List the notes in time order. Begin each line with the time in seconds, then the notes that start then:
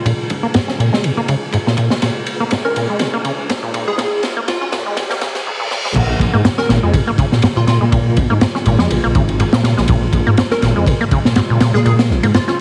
Already playing: C#3 G#3 A#3 F4, riser
0.05 A#2, kick, ride
0.30 kick, ride
0.43 A#3
0.54 G#2, snare, ride
0.68 C#4, snare
0.79 A#2, ride
0.93 G#3, snare
1.04 A#2, ride
1.17 A#3
1.28 C#3, kick, ride
1.53 G#2, kick, ride
1.67 A#2, snare
1.77 A#2, kick, ride
1.90 G#3, snare
2.02 A#2, snare, ride
2.26 ride
2.40 A#3
2.51 G#2, snare, ride
2.65 C#4 A#4
2.76 A#2, ride
2.90 G#3
2.99 A#2, snare, ride
3.14 A#3
3.25 C#3, ride
3.49 G#2, snare, ride
3.63 A#2
3.74 A#2, ride
3.87 G#3 G#4
3.98 A#2 G#4, snare, ride
4.23 snare, ride
4.37 A#3
4.48 G#2 F4, snare, ride
4.61 C#4 F4
4.72 A#2, snare, ride
4.86 G#3
4.97 A#2, snare, ride, reverse cymbal
5.10 A#3, snare
5.21 C#3, snare, ride
5.35 snare, ride
5.47 G#2
5.60 A#2
5.71 A#2, snare
5.85 G#3, snare
5.95 A#1 A#2 C#3 G#3 A#3 F4, kick, crash, ride
6.20 A#1, kick, ride
6.33 G#2 A#3
6.45 G#2, snare, ride
6.58 C#4 A#4, snare
6.69 G#1 A#2, snare, ride
6.83 F2 G#3
6.94 A#2, kick, ride
7.07 A#3
7.18 C#3, kick, ride
7.32 A#2, snare
7.42 G#2, snare, ride
7.56 A#2 F4
7.67 A#2 F4, snare, ride
7.81 A#2 G#3
7.92 A#2, kick, ride
8.17 A#1, kick, ride
8.30 G#2 A#3
8.41 G#2, snare, ride
8.55 C#4, snare
8.66 G#1 A#2, ride
8.79 F2 G#3, snare
8.90 A#1 A#2, ride
9.04 A#1 A#3
9.15 G#1 C#3, kick, ride
9.29 ride
9.40 G#2, ride
9.53 A#2, snare
9.63 A#2, snare, ride
9.77 A#1 G#3, snare
9.88 A#1 A#2, kick, ride
10.13 A#1, kick, ride
10.27 G#2 A#3
10.37 G#2, snare, ride
10.51 C#4 A#4, snare
10.62 G#1 A#2, snare, ride
10.76 F2 G#3
10.87 A#2, kick, ride
11.01 A#3
11.11 C#3, kick, ride
11.25 A#2, snare
11.36 G#2, snare, ride
11.50 A#2
11.60 A#2, snare, ride
11.74 A#2 G#3 G#4, snare
11.85 A#2 G#4, ride
11.99 snare, ride
12.10 A#1, snare
12.23 G#2 A#3, ride
12.34 G#2 F4, snare, ride
12.48 C#4 F4, snare